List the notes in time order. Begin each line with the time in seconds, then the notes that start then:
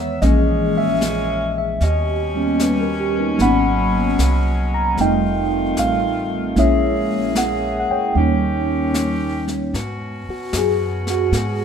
Already playing: E2 D#3 E3 G#3 B3 B4 C#5 E5 F#5 A#5
0.21 A#1 A#2 E3 G#3 A#3 C#4 G#4 D#5, brush sweep, snare
0.78 E5
1.01 snare, hi-hat pedal
1.58 E5
1.81 D#2 B2 G3 C#4 G4 D#5, brush sweep, snare
2.35 G3 A#3 B3 C#4
2.60 B4, snare, hi-hat pedal
2.81 A#4
3.00 G4
3.21 D#4
3.38 G#1 F#3 G#3 A#3 B3 B5, brush sweep, snare
3.42 C#4 F#5
4.18 C2, snare, hi-hat pedal
4.74 A#5
4.96 F1 G3 A3 F4, brush sweep, snare
5.00 D#3 C4 D#4 D#5 G5
5.77 A1 F5, snare, hi-hat pedal
6.56 A#1 C#3 G#3 A#3 C#4 E4 G#4 C#5 E5, brush sweep, snare
7.35 F#5, snare, hi-hat pedal
7.80 F#5
7.90 C#5 G5, muted upright bass stroke
8.15 D#2 D#3 G3 A#3 C#4 D#4 G4, brush sweep
8.94 snare, hi-hat pedal
9.48 snare
9.74 G#2 B2 B3 C#4 F#4, brush sweep, snare
10.28 F#4, muted upright bass stroke
10.53 F#2, snare, hi-hat pedal
10.58 G#4
11.07 F#4, snare
11.32 G#2, brush sweep, snare
11.37 G#4